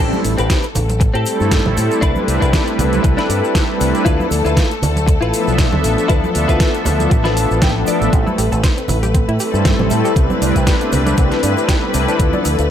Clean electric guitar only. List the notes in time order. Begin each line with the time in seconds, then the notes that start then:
0.00 C4 G4 A4
0.38 C4 G4 B4
0.88 muted clean electric guitar stroke
1.00 muted clean electric guitar stroke
1.14 C4 G4 A4
1.90 muted clean electric guitar stroke
2.01 D4 E4 B4
2.40 D4 E4 B4
2.92 muted clean electric guitar stroke
3.03 muted clean electric guitar stroke
3.17 D4 E4 B4
3.94 muted clean electric guitar stroke
4.05 E4 F4 B4
4.45 E4 F4 B4
4.95 muted clean electric guitar stroke
5.06 muted clean electric guitar stroke
5.21 E4 F4 B4
5.97 muted clean electric guitar stroke
6.08 E4 F4 B4
6.48 E4 F4 B4
6.99 muted clean electric guitar stroke
7.10 muted clean electric guitar stroke
7.24 E4 F4 B4
7.37 A5
7.62 G5
7.88 D5
8.01 muted clean electric guitar stroke